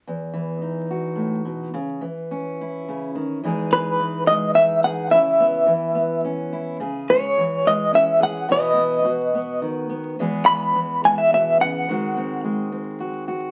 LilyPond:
<<
  \new Staff \with { instrumentName = "Clean electric guitar" } { \time 3/4 \key e \major \tempo 4 = 107 r2. | r2. | r8 b'4 dis''8 e''8 fis''8 | e''2 r4 |
r8 cis''4 dis''8 e''8 fis''8 | dis''2 r4 | r8 b''4 gis''16 e''16 e''8 fis''8~ | fis''4 r2 | }
  \new Staff \with { instrumentName = "Steel-string acoustic guitar" } { \clef bass \time 3/4 \key e \major << { r4 dis'8 fis'4. | r4 cis'8 e'4. | <e gis dis' gis'>8 gis4 gis8 dis'8 gis'8 | e'8 b4 b8 cis'8 e'8 |
gis'8 gis4 gis8 cis'8 gis'8 | <e b e'>8 b8 fis'8 b4 b8 | <e gis b gis'>8 gis4 gis4. | <gis bis fis'>8 bis4 bis8 fis'8 fis'8 | } \\ { e,8 e4. a,8 b,8 | cis8 e4. cis8 dis8 | e,4 e2 | cis4 e2 |
cis4 e2 | b,4 b,4 dis4 | e,4 e4 b,8 cis8 | dis4 gis2 | } >> }
>>